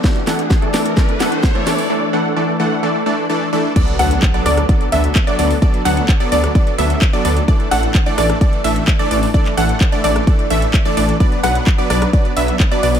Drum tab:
CC |----------------|----------------|x---------------|----------------|
HH |xxoxxxoxxxoxxxoo|----------------|xxoxxxoxxxoxxxoo|xxoxxxoxxxoxxxox|
CP |----------------|----------------|----x-------x---|----x-------x---|
SD |o-o-o-o-o-o-o-o-|----------------|--r---rr--------|-------r--------|
BD |o---o---o---o---|----------------|o---o---o---o---|o---o---o---o---|

CC |----------------|----------------|----------------|
HH |xxoxxxoxxxoxxxoo|xxoxxxoxxxoxxxox|xxoxxxoxxxoxxxoo|
CP |----x-------x---|-x--x-------x---|----x-------x---|
SD |--r---rr--------|-------r--------|--r---rr--------|
BD |o---o---o---o---|o---o---o---o---|o---o---o---o---|